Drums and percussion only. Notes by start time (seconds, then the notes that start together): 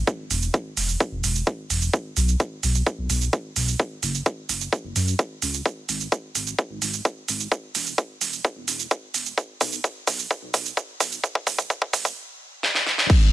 0.07 kick, shaker
0.31 open hi-hat, shaker
0.42 shaker
0.54 kick, shaker
0.77 open hi-hat, shaker
0.89 shaker
1.00 kick, shaker
1.24 open hi-hat, shaker
1.35 shaker
1.47 kick, shaker
1.70 open hi-hat, shaker
1.82 shaker
1.93 kick, shaker
2.17 open hi-hat, shaker
2.28 shaker
2.40 kick, shaker
2.63 open hi-hat, shaker
2.75 shaker
2.87 kick, shaker
3.10 open hi-hat, shaker
3.21 shaker
3.33 kick, shaker
3.56 open hi-hat, shaker
3.68 shaker
3.80 kick, shaker
4.03 open hi-hat, shaker
4.14 shaker
4.26 kick, shaker
4.49 open hi-hat, shaker
4.61 shaker
4.73 kick, shaker
4.96 open hi-hat, shaker
5.08 shaker
5.19 kick, shaker
5.42 open hi-hat, shaker
5.54 shaker
5.66 kick, shaker
5.89 open hi-hat, shaker
6.01 shaker
6.12 kick, shaker
6.35 open hi-hat, shaker
6.47 shaker
6.59 kick, shaker
6.82 open hi-hat, shaker
6.94 shaker
7.05 kick, shaker
7.28 open hi-hat, shaker
7.40 shaker
7.52 kick, shaker
7.75 open hi-hat, shaker
7.87 shaker
7.98 kick, shaker
8.21 open hi-hat, shaker
8.33 shaker
8.45 kick, shaker
8.68 open hi-hat, shaker
8.80 shaker
8.91 kick, shaker
9.14 open hi-hat, shaker
9.26 shaker
9.38 kick, shaker
9.61 kick, open hi-hat, shaker
9.72 shaker
9.84 kick, shaker
10.07 kick, open hi-hat, shaker
10.19 shaker
10.31 kick, shaker
10.54 kick, open hi-hat, shaker
10.66 shaker
10.77 kick, shaker
11.00 kick, open hi-hat, shaker
11.12 shaker
11.24 kick, shaker
11.35 kick
11.47 kick, open hi-hat, shaker
11.58 kick, shaker
11.70 kick, shaker
11.82 kick
11.93 kick, open hi-hat, shaker
12.05 kick, shaker
12.63 snare
12.75 snare
12.87 snare
12.98 snare
13.10 kick, crash, ride, shaker